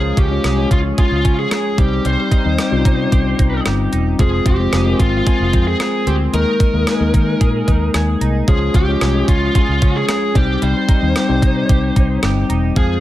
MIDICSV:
0, 0, Header, 1, 6, 480
1, 0, Start_track
1, 0, Tempo, 535714
1, 1837, Time_signature, 4, 2, 24, 8
1, 11649, End_track
2, 0, Start_track
2, 0, Title_t, "Lead electric guitar"
2, 0, Program_c, 0, 29
2, 0, Note_on_c, 0, 68, 79
2, 146, Note_off_c, 0, 68, 0
2, 167, Note_on_c, 0, 67, 79
2, 609, Note_off_c, 0, 67, 0
2, 649, Note_on_c, 0, 65, 75
2, 712, Note_off_c, 0, 65, 0
2, 889, Note_on_c, 0, 65, 81
2, 1218, Note_off_c, 0, 65, 0
2, 1246, Note_on_c, 0, 68, 79
2, 1577, Note_off_c, 0, 68, 0
2, 1606, Note_on_c, 0, 67, 81
2, 1825, Note_off_c, 0, 67, 0
2, 1848, Note_on_c, 0, 72, 93
2, 3246, Note_off_c, 0, 72, 0
2, 3767, Note_on_c, 0, 68, 86
2, 4003, Note_off_c, 0, 68, 0
2, 4007, Note_on_c, 0, 67, 81
2, 4449, Note_off_c, 0, 67, 0
2, 4485, Note_on_c, 0, 65, 76
2, 4704, Note_off_c, 0, 65, 0
2, 4724, Note_on_c, 0, 65, 79
2, 5056, Note_off_c, 0, 65, 0
2, 5084, Note_on_c, 0, 68, 87
2, 5441, Note_off_c, 0, 68, 0
2, 5445, Note_on_c, 0, 67, 84
2, 5509, Note_off_c, 0, 67, 0
2, 5684, Note_on_c, 0, 70, 90
2, 7085, Note_off_c, 0, 70, 0
2, 7605, Note_on_c, 0, 68, 82
2, 7844, Note_off_c, 0, 68, 0
2, 7848, Note_on_c, 0, 67, 82
2, 8289, Note_off_c, 0, 67, 0
2, 8325, Note_on_c, 0, 65, 77
2, 8554, Note_off_c, 0, 65, 0
2, 8565, Note_on_c, 0, 65, 80
2, 8924, Note_on_c, 0, 68, 85
2, 8932, Note_off_c, 0, 65, 0
2, 9282, Note_off_c, 0, 68, 0
2, 9285, Note_on_c, 0, 67, 84
2, 9525, Note_on_c, 0, 72, 96
2, 9528, Note_off_c, 0, 67, 0
2, 10925, Note_off_c, 0, 72, 0
2, 11446, Note_on_c, 0, 68, 87
2, 11649, Note_off_c, 0, 68, 0
2, 11649, End_track
3, 0, Start_track
3, 0, Title_t, "Clean electric guitar"
3, 0, Program_c, 1, 27
3, 0, Note_on_c, 1, 53, 76
3, 157, Note_on_c, 1, 61, 49
3, 397, Note_on_c, 1, 68, 60
3, 627, Note_off_c, 1, 61, 0
3, 638, Note_on_c, 1, 61, 53
3, 866, Note_off_c, 1, 68, 0
3, 876, Note_on_c, 1, 68, 62
3, 1106, Note_off_c, 1, 61, 0
3, 1117, Note_on_c, 1, 61, 58
3, 1343, Note_off_c, 1, 68, 0
3, 1354, Note_on_c, 1, 68, 59
3, 1591, Note_off_c, 1, 53, 0
3, 1595, Note_on_c, 1, 55, 70
3, 1643, Note_off_c, 1, 68, 0
3, 1645, Note_off_c, 1, 61, 0
3, 1823, Note_off_c, 1, 55, 0
3, 1834, Note_on_c, 1, 55, 78
3, 2075, Note_on_c, 1, 63, 52
3, 2314, Note_on_c, 1, 67, 56
3, 2545, Note_off_c, 1, 63, 0
3, 2555, Note_on_c, 1, 63, 53
3, 2784, Note_off_c, 1, 67, 0
3, 2795, Note_on_c, 1, 67, 62
3, 3024, Note_off_c, 1, 63, 0
3, 3035, Note_on_c, 1, 63, 57
3, 3266, Note_off_c, 1, 67, 0
3, 3277, Note_on_c, 1, 67, 63
3, 3506, Note_off_c, 1, 63, 0
3, 3516, Note_on_c, 1, 63, 54
3, 3754, Note_off_c, 1, 55, 0
3, 3758, Note_on_c, 1, 53, 79
3, 3805, Note_off_c, 1, 63, 0
3, 3805, Note_off_c, 1, 67, 0
3, 3998, Note_on_c, 1, 60, 52
3, 4237, Note_on_c, 1, 68, 60
3, 4468, Note_off_c, 1, 60, 0
3, 4479, Note_on_c, 1, 60, 53
3, 4715, Note_off_c, 1, 68, 0
3, 4718, Note_on_c, 1, 68, 62
3, 4946, Note_off_c, 1, 60, 0
3, 4957, Note_on_c, 1, 60, 56
3, 5194, Note_off_c, 1, 68, 0
3, 5198, Note_on_c, 1, 68, 63
3, 5426, Note_off_c, 1, 60, 0
3, 5437, Note_on_c, 1, 60, 55
3, 5673, Note_off_c, 1, 53, 0
3, 5677, Note_on_c, 1, 51, 78
3, 5725, Note_off_c, 1, 60, 0
3, 5917, Note_on_c, 1, 63, 50
3, 6152, Note_off_c, 1, 68, 0
3, 6156, Note_on_c, 1, 68, 60
3, 6387, Note_off_c, 1, 63, 0
3, 6398, Note_on_c, 1, 63, 53
3, 6634, Note_off_c, 1, 68, 0
3, 6637, Note_on_c, 1, 68, 62
3, 6866, Note_off_c, 1, 63, 0
3, 6877, Note_on_c, 1, 63, 56
3, 7114, Note_off_c, 1, 68, 0
3, 7118, Note_on_c, 1, 68, 64
3, 7346, Note_off_c, 1, 63, 0
3, 7357, Note_on_c, 1, 63, 53
3, 7594, Note_off_c, 1, 51, 0
3, 7597, Note_on_c, 1, 53, 81
3, 7645, Note_off_c, 1, 63, 0
3, 7645, Note_off_c, 1, 68, 0
3, 7837, Note_on_c, 1, 61, 50
3, 8076, Note_on_c, 1, 68, 63
3, 8305, Note_off_c, 1, 61, 0
3, 8316, Note_on_c, 1, 61, 53
3, 8546, Note_off_c, 1, 68, 0
3, 8556, Note_on_c, 1, 68, 63
3, 8786, Note_off_c, 1, 61, 0
3, 8796, Note_on_c, 1, 61, 56
3, 9025, Note_off_c, 1, 68, 0
3, 9036, Note_on_c, 1, 68, 65
3, 9272, Note_off_c, 1, 53, 0
3, 9276, Note_on_c, 1, 55, 74
3, 9324, Note_off_c, 1, 68, 0
3, 9325, Note_off_c, 1, 61, 0
3, 9505, Note_off_c, 1, 55, 0
3, 9516, Note_on_c, 1, 55, 79
3, 9757, Note_on_c, 1, 63, 52
3, 9996, Note_on_c, 1, 67, 60
3, 10225, Note_off_c, 1, 63, 0
3, 10236, Note_on_c, 1, 63, 54
3, 10464, Note_off_c, 1, 67, 0
3, 10475, Note_on_c, 1, 67, 64
3, 10706, Note_off_c, 1, 63, 0
3, 10717, Note_on_c, 1, 63, 56
3, 10945, Note_off_c, 1, 67, 0
3, 10956, Note_on_c, 1, 67, 64
3, 11185, Note_off_c, 1, 63, 0
3, 11195, Note_on_c, 1, 63, 56
3, 11432, Note_off_c, 1, 55, 0
3, 11436, Note_on_c, 1, 53, 79
3, 11484, Note_off_c, 1, 63, 0
3, 11484, Note_off_c, 1, 67, 0
3, 11649, Note_off_c, 1, 53, 0
3, 11649, End_track
4, 0, Start_track
4, 0, Title_t, "Tine electric piano"
4, 0, Program_c, 2, 4
4, 0, Note_on_c, 2, 56, 63
4, 0, Note_on_c, 2, 61, 55
4, 0, Note_on_c, 2, 65, 53
4, 0, Note_on_c, 2, 73, 68
4, 69, Control_c, 2, 64, 127
4, 243, Note_off_c, 2, 56, 0
4, 244, Note_off_c, 2, 61, 0
4, 246, Note_off_c, 2, 65, 0
4, 248, Note_off_c, 2, 73, 0
4, 272, Note_on_c, 2, 56, 61
4, 275, Note_on_c, 2, 61, 55
4, 279, Note_on_c, 2, 65, 56
4, 282, Note_on_c, 2, 73, 68
4, 494, Note_off_c, 2, 56, 0
4, 495, Note_off_c, 2, 61, 0
4, 497, Note_off_c, 2, 65, 0
4, 499, Note_off_c, 2, 73, 0
4, 510, Note_on_c, 2, 56, 67
4, 514, Note_on_c, 2, 61, 61
4, 517, Note_on_c, 2, 65, 60
4, 521, Note_on_c, 2, 73, 70
4, 1390, Note_off_c, 2, 56, 0
4, 1392, Note_off_c, 2, 61, 0
4, 1393, Note_off_c, 2, 65, 0
4, 1395, Note_off_c, 2, 73, 0
4, 1591, Note_on_c, 2, 55, 68
4, 1595, Note_on_c, 2, 60, 65
4, 1599, Note_on_c, 2, 63, 65
4, 1603, Note_on_c, 2, 72, 80
4, 1608, Control_c, 2, 64, 0
4, 1760, Control_c, 2, 64, 127
4, 2142, Note_off_c, 2, 55, 0
4, 2144, Note_off_c, 2, 60, 0
4, 2146, Note_off_c, 2, 63, 0
4, 2147, Note_off_c, 2, 72, 0
4, 2190, Note_on_c, 2, 55, 66
4, 2195, Note_on_c, 2, 60, 60
4, 2199, Note_on_c, 2, 63, 59
4, 2202, Note_on_c, 2, 75, 68
4, 2413, Note_off_c, 2, 55, 0
4, 2415, Note_off_c, 2, 60, 0
4, 2417, Note_off_c, 2, 63, 0
4, 2419, Note_off_c, 2, 75, 0
4, 2430, Note_on_c, 2, 55, 81
4, 2433, Note_on_c, 2, 60, 75
4, 2436, Note_on_c, 2, 61, 57
4, 2440, Note_on_c, 2, 65, 87
4, 2494, Note_off_c, 2, 61, 0
4, 2494, Note_on_c, 2, 63, 74
4, 3310, Note_off_c, 2, 55, 0
4, 3311, Note_off_c, 2, 60, 0
4, 3315, Note_off_c, 2, 65, 0
4, 3342, Note_off_c, 2, 63, 0
4, 3752, Note_on_c, 2, 56, 60
4, 3756, Note_on_c, 2, 60, 58
4, 3759, Note_on_c, 2, 65, 56
4, 3763, Note_on_c, 2, 72, 73
4, 3768, Control_c, 2, 64, 0
4, 3921, Control_c, 2, 64, 127
4, 4083, Note_off_c, 2, 56, 0
4, 4085, Note_off_c, 2, 60, 0
4, 4087, Note_off_c, 2, 65, 0
4, 4088, Note_off_c, 2, 72, 0
4, 4111, Note_on_c, 2, 56, 63
4, 4115, Note_on_c, 2, 60, 61
4, 4119, Note_on_c, 2, 65, 58
4, 4121, Note_on_c, 2, 72, 70
4, 4333, Note_off_c, 2, 56, 0
4, 4335, Note_off_c, 2, 60, 0
4, 4337, Note_off_c, 2, 65, 0
4, 4338, Note_off_c, 2, 72, 0
4, 4351, Note_on_c, 2, 56, 68
4, 4355, Note_on_c, 2, 60, 61
4, 4359, Note_on_c, 2, 65, 59
4, 4362, Note_on_c, 2, 70, 59
4, 4417, Note_off_c, 2, 70, 0
4, 4420, Note_on_c, 2, 72, 73
4, 5230, Note_off_c, 2, 56, 0
4, 5232, Note_off_c, 2, 60, 0
4, 5234, Note_off_c, 2, 65, 0
4, 5265, Note_off_c, 2, 72, 0
4, 5671, Note_on_c, 2, 56, 62
4, 5675, Note_on_c, 2, 58, 58
4, 5679, Note_on_c, 2, 63, 54
4, 5682, Note_on_c, 2, 70, 70
4, 5687, Control_c, 2, 64, 0
4, 5871, Control_c, 2, 64, 127
4, 6003, Note_off_c, 2, 56, 0
4, 6005, Note_off_c, 2, 58, 0
4, 6006, Note_off_c, 2, 63, 0
4, 6008, Note_off_c, 2, 70, 0
4, 6033, Note_on_c, 2, 56, 67
4, 6037, Note_on_c, 2, 58, 62
4, 6040, Note_on_c, 2, 63, 58
4, 6044, Note_on_c, 2, 70, 73
4, 6254, Note_off_c, 2, 56, 0
4, 6256, Note_off_c, 2, 58, 0
4, 6258, Note_off_c, 2, 63, 0
4, 6259, Note_off_c, 2, 70, 0
4, 6272, Note_on_c, 2, 56, 84
4, 6276, Note_on_c, 2, 58, 71
4, 6279, Note_on_c, 2, 63, 75
4, 6283, Note_on_c, 2, 70, 83
4, 7151, Note_off_c, 2, 56, 0
4, 7153, Note_off_c, 2, 58, 0
4, 7154, Note_off_c, 2, 63, 0
4, 7156, Note_off_c, 2, 70, 0
4, 7591, Note_on_c, 2, 56, 58
4, 7595, Note_on_c, 2, 61, 58
4, 7598, Note_on_c, 2, 65, 57
4, 7602, Note_on_c, 2, 73, 68
4, 7608, Control_c, 2, 64, 0
4, 7774, Control_c, 2, 64, 127
4, 7923, Note_off_c, 2, 56, 0
4, 7924, Note_off_c, 2, 61, 0
4, 7926, Note_off_c, 2, 65, 0
4, 7928, Note_off_c, 2, 73, 0
4, 7953, Note_on_c, 2, 56, 62
4, 7955, Note_on_c, 2, 61, 57
4, 7960, Note_on_c, 2, 65, 60
4, 7963, Note_on_c, 2, 73, 69
4, 8174, Note_off_c, 2, 56, 0
4, 8175, Note_off_c, 2, 61, 0
4, 8177, Note_off_c, 2, 65, 0
4, 8179, Note_off_c, 2, 73, 0
4, 8191, Note_on_c, 2, 56, 68
4, 8193, Note_on_c, 2, 61, 64
4, 8197, Note_on_c, 2, 65, 60
4, 8201, Note_on_c, 2, 73, 75
4, 9070, Note_off_c, 2, 56, 0
4, 9072, Note_off_c, 2, 61, 0
4, 9073, Note_off_c, 2, 65, 0
4, 9075, Note_off_c, 2, 73, 0
4, 9269, Note_on_c, 2, 55, 73
4, 9274, Note_on_c, 2, 60, 66
4, 9277, Note_on_c, 2, 63, 68
4, 9281, Note_on_c, 2, 72, 78
4, 9290, Control_c, 2, 64, 0
4, 9443, Control_c, 2, 64, 127
4, 9821, Note_off_c, 2, 55, 0
4, 9823, Note_off_c, 2, 60, 0
4, 9825, Note_off_c, 2, 63, 0
4, 9827, Note_off_c, 2, 72, 0
4, 9871, Note_on_c, 2, 55, 66
4, 9875, Note_on_c, 2, 60, 59
4, 9879, Note_on_c, 2, 63, 64
4, 9882, Note_on_c, 2, 72, 71
4, 10093, Note_off_c, 2, 55, 0
4, 10095, Note_off_c, 2, 60, 0
4, 10097, Note_off_c, 2, 63, 0
4, 10099, Note_off_c, 2, 72, 0
4, 10111, Note_on_c, 2, 55, 81
4, 10114, Note_on_c, 2, 60, 76
4, 10118, Note_on_c, 2, 63, 76
4, 10121, Note_on_c, 2, 72, 86
4, 10990, Note_off_c, 2, 55, 0
4, 10992, Note_off_c, 2, 60, 0
4, 10994, Note_off_c, 2, 63, 0
4, 10995, Note_off_c, 2, 72, 0
4, 11430, Note_on_c, 2, 56, 65
4, 11435, Note_on_c, 2, 60, 60
4, 11438, Note_on_c, 2, 65, 57
4, 11441, Note_on_c, 2, 72, 73
4, 11450, Control_c, 2, 64, 0
4, 11628, Control_c, 2, 64, 127
4, 11649, Note_off_c, 2, 56, 0
4, 11649, Note_off_c, 2, 60, 0
4, 11649, Note_off_c, 2, 65, 0
4, 11649, Note_off_c, 2, 72, 0
4, 11649, End_track
5, 0, Start_track
5, 0, Title_t, "Fingered electric bass"
5, 0, Program_c, 3, 33
5, 0, Note_on_c, 3, 37, 89
5, 97, Note_off_c, 3, 37, 0
5, 155, Note_on_c, 3, 37, 79
5, 336, Note_off_c, 3, 37, 0
5, 394, Note_on_c, 3, 36, 82
5, 575, Note_off_c, 3, 36, 0
5, 636, Note_on_c, 3, 37, 71
5, 816, Note_off_c, 3, 37, 0
5, 997, Note_on_c, 3, 37, 85
5, 1087, Note_off_c, 3, 37, 0
5, 1119, Note_on_c, 3, 49, 88
5, 1298, Note_off_c, 3, 49, 0
5, 1596, Note_on_c, 3, 36, 89
5, 1776, Note_off_c, 3, 36, 0
5, 1835, Note_on_c, 3, 36, 90
5, 1926, Note_off_c, 3, 36, 0
5, 2196, Note_on_c, 3, 39, 77
5, 2286, Note_off_c, 3, 39, 0
5, 2436, Note_on_c, 3, 36, 81
5, 2526, Note_off_c, 3, 36, 0
5, 2555, Note_on_c, 3, 48, 74
5, 2736, Note_off_c, 3, 48, 0
5, 2797, Note_on_c, 3, 36, 75
5, 2977, Note_off_c, 3, 36, 0
5, 3039, Note_on_c, 3, 36, 74
5, 3218, Note_off_c, 3, 36, 0
5, 3279, Note_on_c, 3, 31, 77
5, 3458, Note_off_c, 3, 31, 0
5, 3518, Note_on_c, 3, 28, 74
5, 3698, Note_off_c, 3, 28, 0
5, 3756, Note_on_c, 3, 29, 91
5, 3936, Note_off_c, 3, 29, 0
5, 3994, Note_on_c, 3, 29, 80
5, 4175, Note_off_c, 3, 29, 0
5, 4235, Note_on_c, 3, 29, 88
5, 4416, Note_off_c, 3, 29, 0
5, 4475, Note_on_c, 3, 32, 79
5, 4656, Note_off_c, 3, 32, 0
5, 4837, Note_on_c, 3, 29, 86
5, 4927, Note_off_c, 3, 29, 0
5, 4960, Note_on_c, 3, 41, 83
5, 5139, Note_off_c, 3, 41, 0
5, 5436, Note_on_c, 3, 38, 85
5, 5616, Note_off_c, 3, 38, 0
5, 5674, Note_on_c, 3, 39, 94
5, 5765, Note_off_c, 3, 39, 0
5, 6035, Note_on_c, 3, 39, 77
5, 6125, Note_off_c, 3, 39, 0
5, 6274, Note_on_c, 3, 39, 84
5, 6365, Note_off_c, 3, 39, 0
5, 6397, Note_on_c, 3, 51, 82
5, 6577, Note_off_c, 3, 51, 0
5, 6638, Note_on_c, 3, 46, 80
5, 6817, Note_off_c, 3, 46, 0
5, 6880, Note_on_c, 3, 39, 77
5, 7059, Note_off_c, 3, 39, 0
5, 7115, Note_on_c, 3, 39, 72
5, 7296, Note_off_c, 3, 39, 0
5, 7355, Note_on_c, 3, 36, 72
5, 7536, Note_off_c, 3, 36, 0
5, 7597, Note_on_c, 3, 37, 95
5, 7777, Note_off_c, 3, 37, 0
5, 7834, Note_on_c, 3, 37, 80
5, 8015, Note_off_c, 3, 37, 0
5, 8076, Note_on_c, 3, 36, 81
5, 8256, Note_off_c, 3, 36, 0
5, 8316, Note_on_c, 3, 37, 75
5, 8496, Note_off_c, 3, 37, 0
5, 8677, Note_on_c, 3, 37, 82
5, 8767, Note_off_c, 3, 37, 0
5, 8799, Note_on_c, 3, 49, 87
5, 8978, Note_off_c, 3, 49, 0
5, 9276, Note_on_c, 3, 36, 88
5, 9457, Note_off_c, 3, 36, 0
5, 9516, Note_on_c, 3, 36, 92
5, 9606, Note_off_c, 3, 36, 0
5, 9876, Note_on_c, 3, 39, 76
5, 9966, Note_off_c, 3, 39, 0
5, 10116, Note_on_c, 3, 36, 82
5, 10206, Note_off_c, 3, 36, 0
5, 10235, Note_on_c, 3, 48, 73
5, 10416, Note_off_c, 3, 48, 0
5, 10477, Note_on_c, 3, 36, 80
5, 10657, Note_off_c, 3, 36, 0
5, 10719, Note_on_c, 3, 36, 79
5, 10898, Note_off_c, 3, 36, 0
5, 10955, Note_on_c, 3, 31, 75
5, 11136, Note_off_c, 3, 31, 0
5, 11195, Note_on_c, 3, 28, 79
5, 11376, Note_off_c, 3, 28, 0
5, 11435, Note_on_c, 3, 41, 93
5, 11616, Note_off_c, 3, 41, 0
5, 11649, End_track
6, 0, Start_track
6, 0, Title_t, "Drums"
6, 154, Note_on_c, 9, 36, 90
6, 157, Note_on_c, 9, 42, 65
6, 244, Note_off_c, 9, 36, 0
6, 246, Note_off_c, 9, 42, 0
6, 396, Note_on_c, 9, 37, 91
6, 398, Note_on_c, 9, 42, 77
6, 486, Note_off_c, 9, 37, 0
6, 488, Note_off_c, 9, 42, 0
6, 636, Note_on_c, 9, 36, 82
6, 639, Note_on_c, 9, 42, 73
6, 726, Note_off_c, 9, 36, 0
6, 728, Note_off_c, 9, 42, 0
6, 878, Note_on_c, 9, 36, 86
6, 878, Note_on_c, 9, 42, 80
6, 968, Note_off_c, 9, 36, 0
6, 968, Note_off_c, 9, 42, 0
6, 1119, Note_on_c, 9, 36, 84
6, 1119, Note_on_c, 9, 42, 67
6, 1208, Note_off_c, 9, 42, 0
6, 1209, Note_off_c, 9, 36, 0
6, 1356, Note_on_c, 9, 37, 103
6, 1357, Note_on_c, 9, 42, 81
6, 1446, Note_off_c, 9, 37, 0
6, 1447, Note_off_c, 9, 42, 0
6, 1597, Note_on_c, 9, 36, 88
6, 1599, Note_on_c, 9, 42, 63
6, 1686, Note_off_c, 9, 36, 0
6, 1689, Note_off_c, 9, 42, 0
6, 1837, Note_on_c, 9, 42, 59
6, 1926, Note_off_c, 9, 42, 0
6, 2074, Note_on_c, 9, 36, 85
6, 2076, Note_on_c, 9, 42, 67
6, 2164, Note_off_c, 9, 36, 0
6, 2166, Note_off_c, 9, 42, 0
6, 2316, Note_on_c, 9, 37, 95
6, 2318, Note_on_c, 9, 42, 79
6, 2406, Note_off_c, 9, 37, 0
6, 2408, Note_off_c, 9, 42, 0
6, 2556, Note_on_c, 9, 36, 88
6, 2559, Note_on_c, 9, 42, 72
6, 2646, Note_off_c, 9, 36, 0
6, 2648, Note_off_c, 9, 42, 0
6, 2798, Note_on_c, 9, 36, 82
6, 2798, Note_on_c, 9, 42, 79
6, 2887, Note_off_c, 9, 42, 0
6, 2888, Note_off_c, 9, 36, 0
6, 3039, Note_on_c, 9, 36, 84
6, 3039, Note_on_c, 9, 42, 67
6, 3128, Note_off_c, 9, 42, 0
6, 3129, Note_off_c, 9, 36, 0
6, 3276, Note_on_c, 9, 37, 101
6, 3277, Note_on_c, 9, 42, 80
6, 3365, Note_off_c, 9, 37, 0
6, 3366, Note_off_c, 9, 42, 0
6, 3518, Note_on_c, 9, 42, 65
6, 3608, Note_off_c, 9, 42, 0
6, 3756, Note_on_c, 9, 36, 102
6, 3756, Note_on_c, 9, 42, 62
6, 3846, Note_off_c, 9, 36, 0
6, 3846, Note_off_c, 9, 42, 0
6, 3994, Note_on_c, 9, 36, 85
6, 3996, Note_on_c, 9, 42, 71
6, 4083, Note_off_c, 9, 36, 0
6, 4085, Note_off_c, 9, 42, 0
6, 4235, Note_on_c, 9, 37, 101
6, 4237, Note_on_c, 9, 42, 76
6, 4325, Note_off_c, 9, 37, 0
6, 4327, Note_off_c, 9, 42, 0
6, 4476, Note_on_c, 9, 36, 86
6, 4479, Note_on_c, 9, 42, 71
6, 4565, Note_off_c, 9, 36, 0
6, 4568, Note_off_c, 9, 42, 0
6, 4718, Note_on_c, 9, 36, 88
6, 4718, Note_on_c, 9, 42, 76
6, 4808, Note_off_c, 9, 36, 0
6, 4808, Note_off_c, 9, 42, 0
6, 4958, Note_on_c, 9, 42, 66
6, 4959, Note_on_c, 9, 36, 83
6, 5048, Note_off_c, 9, 42, 0
6, 5049, Note_off_c, 9, 36, 0
6, 5196, Note_on_c, 9, 37, 101
6, 5197, Note_on_c, 9, 42, 80
6, 5286, Note_off_c, 9, 37, 0
6, 5287, Note_off_c, 9, 42, 0
6, 5438, Note_on_c, 9, 42, 62
6, 5528, Note_off_c, 9, 42, 0
6, 5677, Note_on_c, 9, 42, 65
6, 5766, Note_off_c, 9, 42, 0
6, 5914, Note_on_c, 9, 36, 85
6, 5916, Note_on_c, 9, 42, 67
6, 6004, Note_off_c, 9, 36, 0
6, 6006, Note_off_c, 9, 42, 0
6, 6156, Note_on_c, 9, 37, 100
6, 6158, Note_on_c, 9, 42, 75
6, 6246, Note_off_c, 9, 37, 0
6, 6248, Note_off_c, 9, 42, 0
6, 6396, Note_on_c, 9, 36, 88
6, 6400, Note_on_c, 9, 42, 73
6, 6486, Note_off_c, 9, 36, 0
6, 6489, Note_off_c, 9, 42, 0
6, 6638, Note_on_c, 9, 36, 84
6, 6639, Note_on_c, 9, 42, 73
6, 6728, Note_off_c, 9, 36, 0
6, 6729, Note_off_c, 9, 42, 0
6, 6879, Note_on_c, 9, 36, 81
6, 6879, Note_on_c, 9, 42, 70
6, 6969, Note_off_c, 9, 36, 0
6, 6969, Note_off_c, 9, 42, 0
6, 7116, Note_on_c, 9, 37, 95
6, 7117, Note_on_c, 9, 42, 82
6, 7206, Note_off_c, 9, 37, 0
6, 7207, Note_off_c, 9, 42, 0
6, 7359, Note_on_c, 9, 42, 67
6, 7449, Note_off_c, 9, 42, 0
6, 7596, Note_on_c, 9, 42, 62
6, 7597, Note_on_c, 9, 36, 104
6, 7686, Note_off_c, 9, 36, 0
6, 7686, Note_off_c, 9, 42, 0
6, 7834, Note_on_c, 9, 36, 84
6, 7836, Note_on_c, 9, 42, 65
6, 7923, Note_off_c, 9, 36, 0
6, 7925, Note_off_c, 9, 42, 0
6, 8076, Note_on_c, 9, 37, 102
6, 8078, Note_on_c, 9, 42, 78
6, 8166, Note_off_c, 9, 37, 0
6, 8168, Note_off_c, 9, 42, 0
6, 8316, Note_on_c, 9, 36, 88
6, 8319, Note_on_c, 9, 42, 74
6, 8406, Note_off_c, 9, 36, 0
6, 8409, Note_off_c, 9, 42, 0
6, 8557, Note_on_c, 9, 42, 76
6, 8558, Note_on_c, 9, 36, 85
6, 8647, Note_off_c, 9, 36, 0
6, 8647, Note_off_c, 9, 42, 0
6, 8797, Note_on_c, 9, 42, 70
6, 8799, Note_on_c, 9, 36, 81
6, 8887, Note_off_c, 9, 42, 0
6, 8889, Note_off_c, 9, 36, 0
6, 9037, Note_on_c, 9, 37, 100
6, 9038, Note_on_c, 9, 42, 84
6, 9126, Note_off_c, 9, 37, 0
6, 9128, Note_off_c, 9, 42, 0
6, 9277, Note_on_c, 9, 36, 90
6, 9279, Note_on_c, 9, 42, 65
6, 9366, Note_off_c, 9, 36, 0
6, 9368, Note_off_c, 9, 42, 0
6, 9516, Note_on_c, 9, 42, 62
6, 9606, Note_off_c, 9, 42, 0
6, 9754, Note_on_c, 9, 36, 91
6, 9756, Note_on_c, 9, 42, 64
6, 9843, Note_off_c, 9, 36, 0
6, 9846, Note_off_c, 9, 42, 0
6, 9997, Note_on_c, 9, 37, 99
6, 9999, Note_on_c, 9, 42, 78
6, 10086, Note_off_c, 9, 37, 0
6, 10088, Note_off_c, 9, 42, 0
6, 10236, Note_on_c, 9, 36, 88
6, 10239, Note_on_c, 9, 42, 77
6, 10326, Note_off_c, 9, 36, 0
6, 10329, Note_off_c, 9, 42, 0
6, 10478, Note_on_c, 9, 36, 86
6, 10478, Note_on_c, 9, 42, 80
6, 10567, Note_off_c, 9, 36, 0
6, 10568, Note_off_c, 9, 42, 0
6, 10719, Note_on_c, 9, 36, 88
6, 10719, Note_on_c, 9, 42, 70
6, 10808, Note_off_c, 9, 36, 0
6, 10808, Note_off_c, 9, 42, 0
6, 10956, Note_on_c, 9, 37, 99
6, 10957, Note_on_c, 9, 42, 79
6, 11046, Note_off_c, 9, 37, 0
6, 11047, Note_off_c, 9, 42, 0
6, 11198, Note_on_c, 9, 42, 64
6, 11288, Note_off_c, 9, 42, 0
6, 11435, Note_on_c, 9, 42, 64
6, 11436, Note_on_c, 9, 36, 106
6, 11525, Note_off_c, 9, 36, 0
6, 11525, Note_off_c, 9, 42, 0
6, 11649, End_track
0, 0, End_of_file